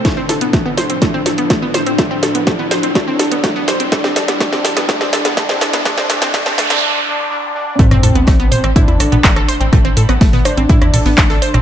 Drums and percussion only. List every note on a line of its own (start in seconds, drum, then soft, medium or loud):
0.05 kick loud
0.05 snare medium
0.05 closed hi-hat medium
0.17 mid tom medium
0.29 snare medium
0.29 open hi-hat loud
0.41 closed hi-hat medium
0.53 kick loud
0.53 snare medium
0.53 closed hi-hat soft
0.78 snare medium
0.78 mid tom medium
0.78 open hi-hat loud
0.90 closed hi-hat medium
1.02 kick loud
1.02 snare medium
1.02 closed hi-hat soft
1.26 snare medium
1.26 open hi-hat loud
1.38 closed hi-hat medium
1.38 mid tom medium
1.50 kick loud
1.50 snare medium
1.50 closed hi-hat medium
1.74 snare medium
1.74 open hi-hat loud
1.86 closed hi-hat medium
1.98 kick loud
1.98 snare medium
1.98 closed hi-hat medium
1.98 mid tom medium
2.23 snare medium
2.23 open hi-hat medium
2.35 closed hi-hat medium
2.47 kick loud
2.47 snare medium
2.47 closed hi-hat soft
2.59 mid tom loud
2.71 snare medium
2.71 open hi-hat loud
2.83 closed hi-hat medium
2.95 kick loud
2.95 snare medium
2.95 closed hi-hat medium
3.19 snare medium
3.19 mid tom medium
3.19 open hi-hat loud
3.32 closed hi-hat medium
3.44 kick loud
3.44 snare medium
3.44 closed hi-hat medium
3.68 snare medium
3.68 open hi-hat loud
3.80 closed hi-hat medium
3.80 mid tom medium
3.92 kick loud
3.92 snare medium
3.92 closed hi-hat medium
4.04 snare medium
4.16 snare medium
4.16 open hi-hat medium
4.28 snare medium
4.28 closed hi-hat medium
4.40 kick loud
4.40 snare medium
4.40 closed hi-hat medium
4.40 mid tom medium
4.53 snare medium
4.65 snare loud
4.65 open hi-hat loud
4.77 snare medium
4.77 closed hi-hat medium
4.89 kick loud
4.89 snare medium
4.89 closed hi-hat medium
5.01 snare medium
5.01 mid tom loud
5.13 snare loud
5.13 open hi-hat loud
5.25 snare medium
5.25 closed hi-hat medium
5.37 kick loud
5.37 snare loud
5.37 closed hi-hat medium
5.49 snare medium
5.61 snare loud
5.61 mid tom loud
5.61 open hi-hat loud
5.73 snare medium
5.73 closed hi-hat medium
5.85 kick loud
5.85 snare loud
5.85 closed hi-hat medium
5.98 snare medium
6.10 snare loud
6.10 open hi-hat medium
6.22 snare medium
6.22 closed hi-hat medium
6.22 mid tom loud
6.34 kick loud
6.34 snare loud
6.34 closed hi-hat medium
6.46 snare medium
6.58 snare loud
6.58 open hi-hat loud
6.70 snare medium
6.70 closed hi-hat medium
7.79 kick loud
7.79 closed hi-hat soft
7.79 closed hi-hat medium
7.91 cross-stick medium
7.91 closed hi-hat soft
7.91 mid tom medium
8.03 closed hi-hat medium
8.03 open hi-hat loud
8.15 closed hi-hat soft
8.27 kick loud
8.27 cross-stick soft
8.27 snare loud
8.27 closed hi-hat soft
8.27 closed hi-hat medium
8.40 closed hi-hat soft
8.52 closed hi-hat medium
8.52 mid tom medium
8.52 open hi-hat loud
8.64 cross-stick soft
8.64 closed hi-hat soft
8.76 kick loud
8.76 closed hi-hat soft
8.76 closed hi-hat medium
8.88 closed hi-hat soft
9.00 cross-stick medium
9.00 closed hi-hat medium
9.00 open hi-hat loud
9.12 closed hi-hat soft
9.12 mid tom medium
9.24 kick loud
9.24 snare loud
9.24 clap loud
9.24 closed hi-hat medium
9.24 closed hi-hat soft
9.36 cross-stick medium
9.36 closed hi-hat soft
9.48 closed hi-hat medium
9.48 open hi-hat loud
9.61 closed hi-hat soft
9.73 kick loud
9.73 cross-stick soft
9.73 closed hi-hat soft
9.73 closed hi-hat medium
9.73 mid tom medium
9.85 closed hi-hat soft
9.97 closed hi-hat medium
9.97 open hi-hat loud
10.09 cross-stick medium
10.09 closed hi-hat soft
10.21 kick loud
10.21 snare loud
10.21 closed hi-hat soft
10.21 closed hi-hat medium
10.33 snare soft
10.33 closed hi-hat soft
10.33 mid tom medium
10.45 cross-stick medium
10.45 closed hi-hat medium
10.45 open hi-hat loud
10.57 closed hi-hat soft
10.69 kick loud
10.69 closed hi-hat medium
10.69 closed hi-hat soft
10.82 cross-stick soft
10.82 closed hi-hat soft
10.94 mid tom medium
10.94 open hi-hat loud
10.94 open hi-hat medium
11.05 snare medium
11.05 closed hi-hat soft
11.18 kick loud
11.18 cross-stick soft
11.18 snare loud
11.18 clap loud
11.18 closed hi-hat medium
11.18 closed hi-hat soft
11.30 snare soft
11.30 closed hi-hat soft
11.42 closed hi-hat medium
11.42 open hi-hat loud
11.54 cross-stick medium
11.54 closed hi-hat soft
11.54 mid tom medium